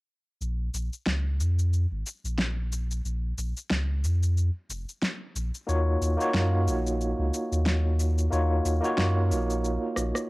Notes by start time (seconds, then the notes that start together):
0.41 A#1, shaker
0.74 A#1, shaker
0.93 shaker
1.06 C#2, snare, shaker
1.39 F2, shaker
1.59 shaker
1.73 shaker
1.91 G#1
2.06 shaker
2.24 A#1, shaker
2.38 snare, shaker
2.72 shaker
2.91 shaker
3.05 A#1, shaker
3.38 A#1, shaker
3.57 shaker
3.70 C#2, snare, shaker
4.03 F2, shaker
4.23 shaker
4.37 shaker
4.69 F1, shaker
4.89 shaker
5.02 snare, shaker
5.35 A#1, shaker
5.55 shaker
5.67 D#2 A#3 D#4 F4 F#4 C#5, shaker
6.01 D#2, shaker
6.17 A#3 D#4 F4 F#4, shaker
6.22 C#5
6.34 F#2, snare, shaker
6.67 A#1, shaker
6.87 shaker
7.01 shaker
7.19 C#2
7.34 shaker
7.52 D#2, shaker
7.66 snare, shaker
8.00 shaker
8.18 shaker
8.30 D#2 A#3 D#4 F4 F#4 C#5, shaker
8.65 D#2, shaker
8.81 A#3 D#4 F4 F#4, shaker
8.85 C#5
8.98 F#2, snare, shaker
9.31 A#1, shaker
9.50 shaker
9.65 shaker
9.96 A#1, cross-stick, shaker
10.15 cross-stick, shaker